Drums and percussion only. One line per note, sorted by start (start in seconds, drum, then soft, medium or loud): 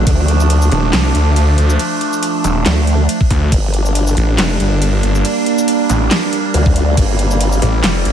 0.07 kick loud
0.07 closed hi-hat medium
0.07 crash medium
0.28 closed hi-hat medium
0.40 shaker medium
0.50 closed hi-hat medium
0.50 crash soft
0.62 shaker medium
0.72 closed hi-hat medium
0.93 snare loud
0.93 clap medium
0.93 closed hi-hat medium
0.93 crash medium
1.15 closed hi-hat medium
1.36 closed hi-hat medium
1.36 crash soft
1.58 closed hi-hat medium
1.70 shaker medium
1.79 closed hi-hat medium
1.79 crash medium
2.01 closed hi-hat medium
2.13 shaker medium
2.23 closed hi-hat medium
2.23 crash soft
2.44 closed hi-hat soft
2.44 shaker medium
2.66 snare loud
2.66 clap medium
2.66 closed hi-hat medium
2.66 crash medium
2.87 closed hi-hat medium
3.09 closed hi-hat medium
3.09 crash soft
3.21 kick loud
3.31 kick medium
3.31 closed hi-hat medium
3.52 kick loud
3.52 closed hi-hat medium
3.52 crash medium
3.74 closed hi-hat medium
3.85 shaker medium
3.95 closed hi-hat medium
3.95 crash soft
4.07 shaker medium
4.17 closed hi-hat medium
4.38 snare loud
4.38 clap medium
4.38 closed hi-hat medium
4.38 crash medium
4.60 closed hi-hat medium
4.82 closed hi-hat medium
4.82 crash soft
5.03 closed hi-hat medium
5.15 shaker medium
5.25 closed hi-hat medium
5.25 crash medium
5.46 closed hi-hat medium
5.58 shaker medium
5.68 closed hi-hat medium
5.68 crash soft
5.89 closed hi-hat medium
5.89 shaker medium
6.11 snare loud
6.11 clap medium
6.11 closed hi-hat medium
6.11 crash medium
6.33 closed hi-hat medium
6.54 closed hi-hat medium
6.54 crash soft
6.66 kick loud
6.76 closed hi-hat medium
6.97 kick loud
6.97 closed hi-hat medium
6.97 crash medium
7.19 closed hi-hat medium
7.31 shaker medium
7.41 closed hi-hat medium
7.41 crash soft
7.52 shaker medium
7.62 closed hi-hat medium
7.84 snare loud
7.84 clap medium
7.84 closed hi-hat medium
7.84 crash medium
8.05 closed hi-hat medium